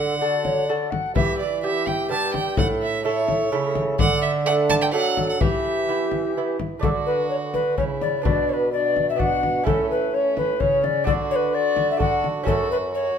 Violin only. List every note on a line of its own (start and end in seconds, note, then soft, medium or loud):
0.00 0.67 F#5 medium
1.16 1.38 E5 medium
1.39 1.62 D5 medium
1.64 1.89 E5 medium
1.87 2.11 G5 medium
2.11 2.34 A5 medium
2.34 2.57 G5 medium
2.58 2.66 F#5 medium
2.83 3.05 E5 medium
3.06 3.75 C#5 medium
4.00 4.21 F#5 loud
4.23 4.31 E5 medium
4.46 4.54 F#5 medium
4.70 4.74 A5 loud
4.82 4.86 G5 loud
4.93 5.28 F#5 loud
5.29 5.42 F#5 medium
5.41 6.36 E5 medium
6.83 7.80 F#4 medium
7.79 8.26 E4 soft
8.26 8.72 D4 medium
8.74 9.19 D4 medium
9.20 9.68 D4 medium
9.67 10.13 C#4 medium
10.13 10.59 C#4 medium
10.60 11.08 C#4 medium
11.07 11.53 F#4 medium
11.53 11.99 F#4 medium
12.01 12.47 F#4 medium
12.47 12.93 F#4 medium
12.94 13.18 F#4 medium